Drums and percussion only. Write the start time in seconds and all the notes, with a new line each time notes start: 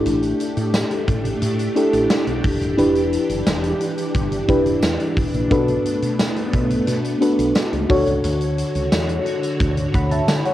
0.06 closed hi-hat
0.23 closed hi-hat
0.40 closed hi-hat
0.57 closed hi-hat
0.74 snare, closed hi-hat, tambourine
0.91 closed hi-hat
1.08 kick, closed hi-hat
1.25 closed hi-hat
1.42 closed hi-hat
1.59 closed hi-hat
1.76 closed hi-hat
1.93 closed hi-hat
2.10 snare, closed hi-hat, tambourine
2.27 closed hi-hat
2.44 kick, open hi-hat
2.61 closed hi-hat
2.78 closed hi-hat
2.95 closed hi-hat
3.13 closed hi-hat
3.29 closed hi-hat
3.46 snare, closed hi-hat, tambourine
3.63 closed hi-hat
3.80 closed hi-hat
3.98 closed hi-hat
4.14 kick, closed hi-hat
4.32 closed hi-hat
4.49 kick, closed hi-hat
4.66 closed hi-hat
4.82 snare, closed hi-hat, tambourine
5.00 closed hi-hat
5.17 kick, open hi-hat
5.34 closed hi-hat
5.51 kick, closed hi-hat
5.68 closed hi-hat
5.85 closed hi-hat
6.02 closed hi-hat
6.19 snare, closed hi-hat, tambourine
6.36 closed hi-hat
6.53 kick, closed hi-hat
6.70 closed hi-hat
6.87 closed hi-hat
7.04 closed hi-hat
7.22 closed hi-hat
7.39 closed hi-hat
7.55 snare, closed hi-hat, tambourine
7.73 closed hi-hat
7.90 kick, open hi-hat
8.07 closed hi-hat
8.24 closed hi-hat
8.41 closed hi-hat
8.58 closed hi-hat
8.75 closed hi-hat
8.92 snare, closed hi-hat, tambourine
9.09 closed hi-hat
9.26 closed hi-hat
9.43 closed hi-hat
9.60 kick, closed hi-hat
9.77 closed hi-hat
9.94 kick, closed hi-hat
10.11 closed hi-hat
10.28 snare, closed hi-hat, tambourine
10.45 closed hi-hat